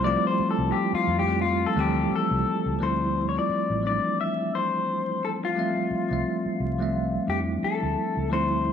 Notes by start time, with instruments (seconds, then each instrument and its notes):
Already playing: fingered electric bass C2, tine electric piano F3 G3 A3 C4 E4
0.02 tine electric piano F3 G3 A3 C4, clean electric guitar D5
0.07 tine electric piano F4
0.27 clean electric guitar C5
0.39 muted fingered electric bass stroke
0.51 clean electric guitar A4
0.58 fingered electric bass C2
0.72 clean electric guitar G4
0.93 clean electric guitar F4, muted fingered electric bass stroke
1.07 fingered electric bass F2
1.19 clean electric guitar G4
1.26 tine electric piano F3 G3 A3 C4
1.31 tine electric piano F4
1.41 clean electric guitar F4
1.66 clean electric guitar A4
1.75 fingered electric bass D2, tine electric piano E3 G3 A3 C4
1.79 tine electric piano F3 G4, clean electric guitar G4
2.16 clean electric guitar A4
2.31 fingered electric bass C2
2.66 fingered electric bass C#2
2.79 fingered electric bass D2, tine electric piano F3 G3 A3 C4
2.83 tine electric piano E4, clean electric guitar C5
3.29 clean electric guitar C#5
3.33 tine electric piano F3 G3 A3 C4 F4
3.39 clean electric guitar D5
3.49 muted fingered electric bass stroke
3.70 fingered electric bass A1
3.82 tine electric piano E3 G3 A3 C4
3.86 tine electric piano F3 D4, clean electric guitar D5
4.21 clean electric guitar E5
4.55 clean electric guitar C5
5.25 clean electric guitar A4
5.45 clean electric guitar F4
5.55 tine electric piano F3 G3 A3 C4
5.59 tine electric piano E5
5.91 muted fingered electric bass stroke
6.09 fingered electric bass C2, tine electric piano F3 G3 A3 C4
6.13 tine electric piano E5
6.45 muted fingered electric bass stroke
6.60 fingered electric bass C2
6.78 tine electric piano F3 G3 A3 C4
6.82 tine electric piano E5
7.27 fingered electric bass F2, tine electric piano F3 G3 A3 C4, clean electric guitar G4
7.31 tine electric piano D4
7.38 tine electric piano E4
7.63 clean electric guitar A4, muted fingered electric bass stroke
7.83 fingered electric bass D2
8.17 fingered electric bass C#2
8.30 fingered electric bass D2, tine electric piano F3 G3 A3 C4 E4, clean electric guitar C5